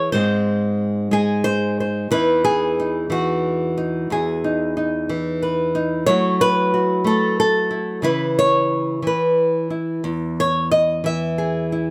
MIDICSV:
0, 0, Header, 1, 2, 480
1, 0, Start_track
1, 0, Tempo, 665927
1, 84, Time_signature, 6, 3, 24, 8
1, 2485, Tempo, 655022
1, 5845, Tempo, 671141
1, 8614, End_track
2, 0, Start_track
2, 0, Title_t, "Nylon-string guitar"
2, 0, Program_c, 0, 24
2, 0, Note_on_c, 0, 52, 65
2, 0, Note_on_c, 0, 68, 78
2, 0, Note_on_c, 0, 73, 99
2, 83, Note_off_c, 0, 52, 0
2, 83, Note_off_c, 0, 73, 0
2, 89, Note_on_c, 0, 72, 88
2, 90, Note_off_c, 0, 68, 0
2, 98, Note_on_c, 0, 44, 71
2, 102, Note_on_c, 0, 56, 44
2, 107, Note_on_c, 0, 60, 46
2, 794, Note_off_c, 0, 56, 0
2, 802, Note_on_c, 0, 56, 62
2, 814, Note_on_c, 0, 68, 79
2, 1030, Note_off_c, 0, 72, 0
2, 1039, Note_on_c, 0, 72, 92
2, 1292, Note_off_c, 0, 72, 0
2, 1300, Note_on_c, 0, 72, 42
2, 1497, Note_off_c, 0, 56, 0
2, 1502, Note_off_c, 0, 44, 0
2, 1504, Note_off_c, 0, 72, 0
2, 1507, Note_off_c, 0, 60, 0
2, 1518, Note_on_c, 0, 40, 62
2, 1524, Note_on_c, 0, 52, 44
2, 1524, Note_on_c, 0, 71, 91
2, 1530, Note_on_c, 0, 63, 43
2, 1532, Note_off_c, 0, 68, 0
2, 1535, Note_on_c, 0, 64, 42
2, 1760, Note_off_c, 0, 64, 0
2, 1763, Note_on_c, 0, 68, 97
2, 2012, Note_off_c, 0, 63, 0
2, 2015, Note_on_c, 0, 63, 44
2, 2230, Note_off_c, 0, 52, 0
2, 2233, Note_on_c, 0, 52, 54
2, 2244, Note_off_c, 0, 71, 0
2, 2247, Note_on_c, 0, 66, 70
2, 2716, Note_off_c, 0, 63, 0
2, 2725, Note_off_c, 0, 68, 0
2, 2725, Note_on_c, 0, 63, 46
2, 2938, Note_off_c, 0, 63, 0
2, 2956, Note_off_c, 0, 40, 0
2, 2965, Note_on_c, 0, 40, 62
2, 2979, Note_on_c, 0, 68, 74
2, 3215, Note_on_c, 0, 63, 41
2, 3444, Note_off_c, 0, 63, 0
2, 3448, Note_off_c, 0, 66, 0
2, 3453, Note_on_c, 0, 63, 45
2, 3689, Note_off_c, 0, 52, 0
2, 3692, Note_on_c, 0, 52, 59
2, 3934, Note_on_c, 0, 71, 47
2, 4163, Note_off_c, 0, 63, 0
2, 4172, Note_on_c, 0, 63, 44
2, 4376, Note_off_c, 0, 63, 0
2, 4376, Note_off_c, 0, 71, 0
2, 4399, Note_off_c, 0, 40, 0
2, 4403, Note_on_c, 0, 73, 104
2, 4406, Note_off_c, 0, 68, 0
2, 4414, Note_on_c, 0, 54, 67
2, 4417, Note_off_c, 0, 52, 0
2, 4420, Note_on_c, 0, 57, 45
2, 4423, Note_on_c, 0, 64, 44
2, 4426, Note_on_c, 0, 66, 48
2, 4639, Note_off_c, 0, 73, 0
2, 4656, Note_on_c, 0, 71, 104
2, 4887, Note_off_c, 0, 66, 0
2, 4896, Note_on_c, 0, 66, 47
2, 5112, Note_off_c, 0, 57, 0
2, 5121, Note_on_c, 0, 57, 60
2, 5128, Note_off_c, 0, 66, 0
2, 5138, Note_on_c, 0, 69, 88
2, 5371, Note_off_c, 0, 69, 0
2, 5379, Note_on_c, 0, 69, 85
2, 5603, Note_off_c, 0, 64, 0
2, 5606, Note_on_c, 0, 64, 40
2, 5613, Note_off_c, 0, 71, 0
2, 5818, Note_off_c, 0, 57, 0
2, 5824, Note_off_c, 0, 54, 0
2, 5836, Note_on_c, 0, 49, 60
2, 5843, Note_off_c, 0, 64, 0
2, 5843, Note_on_c, 0, 52, 46
2, 5846, Note_on_c, 0, 64, 49
2, 5850, Note_off_c, 0, 69, 0
2, 5853, Note_on_c, 0, 71, 88
2, 6098, Note_on_c, 0, 73, 96
2, 6552, Note_off_c, 0, 52, 0
2, 6554, Note_on_c, 0, 52, 55
2, 6559, Note_off_c, 0, 49, 0
2, 6567, Note_off_c, 0, 71, 0
2, 6586, Note_on_c, 0, 71, 71
2, 7037, Note_off_c, 0, 64, 0
2, 7040, Note_on_c, 0, 64, 39
2, 7054, Note_off_c, 0, 73, 0
2, 7280, Note_on_c, 0, 40, 66
2, 7299, Note_off_c, 0, 71, 0
2, 7538, Note_on_c, 0, 73, 93
2, 7760, Note_off_c, 0, 73, 0
2, 7763, Note_on_c, 0, 75, 84
2, 7785, Note_off_c, 0, 64, 0
2, 7992, Note_off_c, 0, 52, 0
2, 7995, Note_on_c, 0, 52, 57
2, 8006, Note_off_c, 0, 75, 0
2, 8009, Note_on_c, 0, 76, 91
2, 8241, Note_on_c, 0, 68, 45
2, 8484, Note_on_c, 0, 64, 40
2, 8614, Note_off_c, 0, 40, 0
2, 8614, Note_off_c, 0, 52, 0
2, 8614, Note_off_c, 0, 64, 0
2, 8614, Note_off_c, 0, 68, 0
2, 8614, Note_off_c, 0, 76, 0
2, 8614, End_track
0, 0, End_of_file